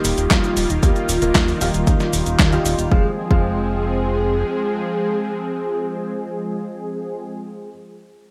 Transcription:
0.00 0.80 D#3 loud
0.00 2.88 D#3 medium
0.00 2.87 G3 medium
0.00 0.80 A#3 medium
0.00 2.87 A#3 medium
0.00 0.80 D#4 medium
0.00 0.80 F4 medium
0.00 2.87 F4 medium
0.00 0.32 G4 loud
0.00 0.80 G4 loud
0.05 0.14 D#1 medium
0.05 open hi-hat loud
0.05 cabasa medium
0.18 0.27 D#1 loud
0.18 closed hi-hat medium
0.18 cabasa soft
0.31 0.40 D#2 loud
0.31 0.71 F4 loud
0.31 kick loud
0.31 snare loud
0.31 clap medium
0.31 closed hi-hat medium
0.31 cabasa soft
0.44 closed hi-hat soft
0.44 cabasa soft
0.57 0.66 D#1 medium
0.57 open hi-hat loud
0.57 cabasa medium
0.70 0.79 D#1 medium
0.70 0.84 D#4 medium
0.70 closed hi-hat medium
0.70 cabasa soft
0.83 0.92 D#2 loud
0.83 1.19 D#3 medium
0.83 1.19 A#3 medium
0.83 1.19 D#4 medium
0.83 2.65 F4 loud
0.83 1.19 F4 medium
0.83 1.19 G4 medium
0.83 kick loud
0.83 closed hi-hat medium
0.83 cabasa soft
0.96 closed hi-hat soft
0.96 cabasa soft
1.09 1.18 D#1 medium
1.09 open hi-hat loud
1.09 cabasa medium
1.22 1.31 D#1 medium
1.22 1.58 D#3 loud
1.22 1.58 A#3 medium
1.22 1.58 D#4 medium
1.22 1.58 F4 medium
1.22 1.58 A#4 loud
1.22 closed hi-hat medium
1.22 cabasa soft
1.35 1.54 D#2 medium
1.35 kick loud
1.35 snare loud
1.35 clap loud
1.35 closed hi-hat medium
1.35 cabasa soft
1.48 open hi-hat medium
1.48 cabasa soft
1.61 1.70 D#1 loud
1.61 2.50 D#3 loud
1.61 2.50 A#3 medium
1.61 2.50 D#4 medium
1.61 2.50 F4 medium
1.61 2.50 G4 loud
1.61 open hi-hat loud
1.61 cabasa medium
1.74 1.84 D#1 medium
1.74 closed hi-hat medium
1.74 cabasa soft
1.87 1.97 D#2 medium
1.87 kick loud
1.87 closed hi-hat medium
1.87 cabasa soft
2.00 snare soft
2.00 cabasa soft
2.13 2.23 D#1 medium
2.13 open hi-hat loud
2.13 cabasa medium
2.26 2.36 D#1 medium
2.26 closed hi-hat medium
2.26 cabasa soft
2.39 2.58 D#2 medium
2.39 kick loud
2.39 snare loud
2.39 clap medium
2.39 closed hi-hat medium
2.39 cabasa soft
2.53 2.88 D#3 loud
2.53 2.88 A#3 medium
2.53 2.88 D#4 medium
2.53 2.88 F4 medium
2.53 2.88 G4 loud
2.53 closed hi-hat soft
2.53 cabasa soft
2.65 2.75 D#1 loud
2.65 open hi-hat loud
2.65 cabasa medium
2.79 2.88 D#1 medium
2.79 closed hi-hat medium
2.79 cabasa soft
2.91 3.06 F1 loud
2.91 7.30 F3 medium
2.91 3.06 F3 medium
2.91 7.30 G#3 medium
2.91 3.06 G#3 medium
2.91 7.30 C4 medium
2.91 3.06 C4 medium
2.91 3.06 F4 medium
2.91 3.06 G#4 medium
2.91 7.30 G#4 medium
2.91 kick loud
3.31 4.44 F1 loud
3.31 7.70 F3 medium
3.31 7.70 G#3 medium
3.31 7.70 C4 medium
3.31 7.70 F4 medium
3.31 7.69 G#4 loud
3.31 kick loud

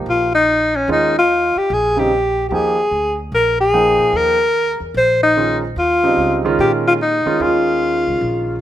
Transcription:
0.00 0.28 F3 soft
0.00 0.28 A#3 soft
0.00 0.29 D#4 soft
0.00 0.29 G4 medium
0.06 0.84 A#1 medium
0.06 0.33 F4 medium
0.35 0.77 D#4 medium
0.76 0.90 C#4 medium
0.88 1.51 D#2 medium
0.88 1.12 D#3 medium
0.88 1.12 G#3 medium
0.88 1.12 C#4 medium
0.88 1.12 F4 medium
0.92 1.15 D#4 medium
1.18 1.59 F4 medium
1.56 1.75 G4 medium
1.56 muted upright bass stroke soft
1.70 2.48 A#1 medium
1.70 2.01 G#4 medium
1.97 2.10 C#3 medium
1.97 2.10 G3 medium
1.97 2.10 C4 medium
1.97 2.10 D#4 medium
1.97 2.48 G4 medium
2.49 2.89 D#2 medium
2.49 2.75 F3 medium
2.49 2.75 A#3 medium
2.49 2.75 D#4 medium
2.49 2.55 G4 medium
2.49 2.76 G4 medium
2.53 3.19 G#4 loud
2.91 3.30 D2 medium
3.32 3.95 A#1 medium
3.32 3.58 A#4 medium
3.60 4.18 G#4 loud
3.73 4.35 F3 medium
3.73 4.35 A#3 medium
3.73 4.35 D#4 medium
3.73 4.36 G5 medium
3.99 4.12 A#2 medium
4.13 4.77 D#2 medium
4.13 4.82 A#4 loud
4.80 4.94 E2 medium
4.94 5.73 A#1 medium
4.94 5.21 C5 loud
5.23 5.60 D#4 medium
5.37 5.60 D#3 medium
5.37 5.60 G#3 medium
5.37 5.61 C#4 medium
5.37 5.61 F4 medium
5.76 6.15 D#2 medium
5.76 6.41 F4 loud
6.03 6.42 C#3 medium
6.03 6.42 G3 medium
6.03 6.42 C4 medium
6.03 6.42 D#4 medium
6.17 6.56 C#2 medium
6.45 6.97 D#3 medium
6.45 6.97 G#3 medium
6.45 6.97 C#4 medium
6.45 6.97 F4 medium
6.59 7.22 A#2 medium
6.59 6.72 G4 medium
6.87 6.93 F4 medium
7.02 7.43 D#4 medium
7.26 7.39 D#3 medium
7.26 7.39 G#3 medium
7.26 7.39 C#4 medium
7.26 7.40 F4 medium
7.26 muted upright bass stroke soft
7.40 8.03 D#2 medium
7.40 8.54 D#3 medium
7.40 8.55 G#3 medium
7.40 8.55 C#4 medium
7.40 8.55 F4 medium
7.40 8.61 F4 medium
8.07 8.20 C#2 medium
8.21 8.61 A#1 medium

